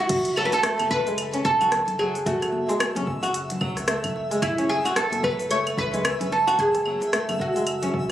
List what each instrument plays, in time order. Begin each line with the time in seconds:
0.00 oud F#4
0.09 sub bass F#1, synth texture E5, kick, closed hi-hat, crash, shaker
0.25 closed hi-hat, shaker
0.36 nylon-string guitar F#3, oud A4, claves
0.45 oud B4
0.52 sub bass E1, oud A4, closed hi-hat, high bongo, shaker
0.63 nylon-string guitar A3, cross-stick, closed hi-hat, shaker
0.79 sub bass F#1, closed hi-hat, high bongo, high conga, claves, shaker
0.91 oud B4, kick, high conga
1.06 sub bass F#1, nylon-string guitar G#3, closed hi-hat, high bongo, shaker
1.18 closed hi-hat, claves, shaker
1.34 nylon-string guitar C#4, closed hi-hat, shaker
1.45 sub bass C#2, oud A4, kick, high bongo
1.61 nylon-string guitar F#4, closed hi-hat, high conga, low conga, claves, shaker
1.72 cross-stick, closed hi-hat, shaker
1.87 sub bass F#1, closed hi-hat, low conga, shaker
1.99 nylon-string guitar F#3, oud G#4, high bongo, claves
2.15 closed hi-hat, shaker
2.26 sub bass F#1, nylon-string guitar A3, oud F#4, kick, closed hi-hat, shaker
2.42 cross-stick, closed hi-hat, claves, shaker
2.52 high conga
2.68 sub bass E1, nylon-string guitar G#3, closed hi-hat, high bongo, shaker
2.80 cross-stick, closed hi-hat, claves, shaker
2.95 sub bass F#1, nylon-string guitar C#4, closed hi-hat, high bongo, high conga, low conga, shaker
3.07 kick, high conga
3.23 sub bass F#1, nylon-string guitar F#4, closed hi-hat, high bongo, claves, shaker
3.34 closed hi-hat, shaker
3.50 closed hi-hat, low conga, shaker
3.61 sub bass C#2, nylon-string guitar F#3, kick, claves
3.77 cross-stick, closed hi-hat, high bongo, shaker
3.88 nylon-string guitar A3, cross-stick, closed hi-hat, shaker
4.04 sub bass F#1, kick, closed hi-hat, low conga, claves, shaker
4.16 high bongo
4.31 nylon-string guitar G#3, closed hi-hat, shaker
4.42 sub bass F#1, oud E4, kick, closed hi-hat, claves, shaker
4.58 nylon-string guitar C#4, closed hi-hat, shaker
4.69 oud G#4
4.85 sub bass E1, nylon-string guitar F#4, closed hi-hat, high bongo, claves, shaker
4.96 oud A4, cross-stick, closed hi-hat, shaker
5.12 sub bass F#1, closed hi-hat, high bongo, high conga, shaker
5.23 nylon-string guitar F#3, oud B4, kick, claves
5.39 sub bass F#1, closed hi-hat, high bongo, shaker
5.50 nylon-string guitar A3, oud C#5, closed hi-hat, shaker
5.67 closed hi-hat, claves, shaker
5.77 sub bass C#2, oud B4, kick, high bongo
5.94 nylon-string guitar G#3, closed hi-hat, high conga, low conga, shaker
6.05 cross-stick, closed hi-hat, claves, shaker
6.20 sub bass F#1, nylon-string guitar C#4, closed hi-hat, low conga, shaker
6.32 oud A4, high bongo
6.47 nylon-string guitar F#4, closed hi-hat, claves, shaker
6.59 sub bass F#1, oud G#4, kick, closed hi-hat, shaker
6.75 cross-stick, closed hi-hat, shaker
6.86 nylon-string guitar F#3, high conga, claves
7.01 sub bass E1, closed hi-hat, high bongo, shaker
7.13 nylon-string guitar A3, cross-stick, closed hi-hat, shaker
7.29 sub bass F#1, closed hi-hat, high bongo, high conga, low conga, claves, shaker
7.40 oud F#4, kick
7.55 sub bass F#1, nylon-string guitar G#3, closed hi-hat, high bongo, shaker
7.67 closed hi-hat, claves, shaker
7.83 nylon-string guitar C#4, closed hi-hat, low conga, shaker
7.94 sub bass C#2, kick